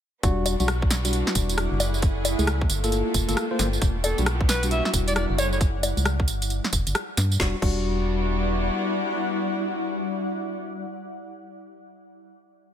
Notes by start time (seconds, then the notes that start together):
0.23 E1 G3 B3 D4 E4 F#4, kick, closed hi-hat, tambourine
0.45 G3 D5, open hi-hat, tambourine, high bongo
0.60 B1 G3 D4 F#4, closed hi-hat, tambourine
0.68 cross-stick, closed hi-hat, tambourine
0.82 kick
0.91 snare, open hi-hat, tambourine
0.95 F#5
1.05 G3 D4 F#4, closed hi-hat, tambourine
1.13 closed hi-hat, tambourine
1.27 snare
1.35 E1, kick, open hi-hat, tambourine
1.49 closed hi-hat, tambourine
1.58 cross-stick, closed hi-hat, tambourine
1.72 F#1
1.80 A3 C#4 E4 G#4, open hi-hat, tambourine, high bongo
1.94 tambourine
2.02 kick, closed hi-hat, tambourine
2.25 open hi-hat, tambourine, high bongo
2.39 C#2 A3 E4 G#4, closed hi-hat, tambourine
2.47 cross-stick, closed hi-hat, tambourine
2.61 kick
2.69 G1 A#3 D4 F4 A4, open hi-hat, tambourine
2.84 A#3 F4 A4, closed hi-hat, tambourine
2.92 closed hi-hat, tambourine
3.14 F1, kick, open hi-hat, tambourine
3.28 G1 A#3 F4 A4, closed hi-hat, tambourine
3.37 cross-stick, closed hi-hat, tambourine
3.51 A#3 F4 C5
3.59 G1, snare, open hi-hat, tambourine
3.73 tambourine
3.82 E1 G3 B3 E4 F#4, kick, closed hi-hat, tambourine
4.04 A4, open hi-hat, tambourine, high bongo
4.18 B1 G3 D4 F#4, closed hi-hat, tambourine
4.26 cross-stick, closed hi-hat, tambourine
4.41 kick
4.46 B4 F#5, snare, open hi-hat, tambourine
4.63 G3 D4 F#4, closed hi-hat, tambourine
4.71 E5, closed hi-hat, tambourine
4.85 E5, snare
4.94 E1, kick, open hi-hat, tambourine
5.08 D5, closed hi-hat, tambourine
5.16 D5, cross-stick, closed hi-hat, tambourine
5.30 F#1
5.38 A3 C#4 E4 G#4 C#5, open hi-hat, tambourine, high bongo
5.52 C#5, tambourine
5.61 kick, closed hi-hat, tambourine
5.83 open hi-hat, tambourine, high bongo
5.97 C#2, closed hi-hat, tambourine
6.05 cross-stick, closed hi-hat, tambourine
6.20 kick
6.28 G1, open hi-hat, tambourine
6.42 closed hi-hat, tambourine
6.50 closed hi-hat, tambourine
6.64 snare
6.73 F1, kick, open hi-hat, tambourine
6.87 G1, closed hi-hat, tambourine
6.95 cross-stick, closed hi-hat, tambourine
7.17 G2, snare, open hi-hat, tambourine
7.32 tambourine
7.39 E1 G3 B3 D4 E4 F#4, kick, snare
7.48 G3
7.56 D5
7.61 E1 G3 D4 F#4 F#5, kick, crash